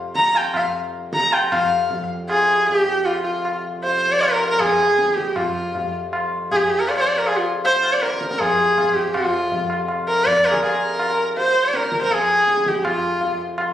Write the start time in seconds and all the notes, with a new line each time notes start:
Already playing: F2 C3
0.15 A#5, tabla ke
0.35 G5, tabla na
0.54 F5, tabla na, tabla ge
1.13 A#5, tabla ke
1.32 G5, tabla na
1.51 F2 C3 F5, tabla na, tabla ge
1.91 tabla tin, tabla ge
2.29 G#4, tabla na
2.67 G4, tabla tin, tabla ge
3.05 F4, tabla na
3.24 F4
3.45 tabla na
3.83 C5, tabla tin
4.11 D5
4.20 A#4, tabla na
4.42 tabla na
4.49 A#4
4.59 G#4, tabla na, tabla ge
4.79 tabla te
4.99 tabla te
5.08 tabla te
5.16 G4, tabla ke
5.27 tabla te
5.36 F4, tabla na, tabla ge
5.75 tabla tin, tabla ge
6.13 tabla na
6.51 G#4, tabla tin, tabla ge
6.56 G4 G#4
6.70 G4
6.79 A#4
6.88 D5, tabla na
6.98 C5
7.07 D5
7.17 A#4
7.27 G#4, tabla na
7.37 F4
7.64 C5, tabla tin
7.83 tabla na
7.93 D5
8.01 A#4, tabla te
8.12 tabla te
8.21 tabla ke
8.31 A#4, tabla te
8.40 G#4, tabla na, tabla ge
8.59 tabla ge
8.78 tabla na, tabla ge
8.96 G4, tabla ge
9.13 F2 C3 F4, tabla na, tabla ge
9.52 tabla tin, tabla ge
9.70 tabla na
9.88 tabla na
10.08 A#4
10.25 D5, tabla tin, tabla ge
10.44 A#4, tabla na
10.50 G#4 A#4, tabla ke
10.62 G#4 A#4, tabla na
10.66 G#4
10.71 A#4
10.99 tabla na
11.37 C5, tabla tin
11.65 D5
11.74 A#4, tabla te
11.82 tabla te
11.92 tabla ke
12.01 A#4 C5, tabla te
12.10 G#4, tabla tin, tabla ge
12.47 tabla te
12.57 tabla te
12.66 G4, tabla ke
12.75 G4, tabla te
12.85 F4, tabla na, tabla ge
13.21 tabla tin, tabla ge
13.58 tabla na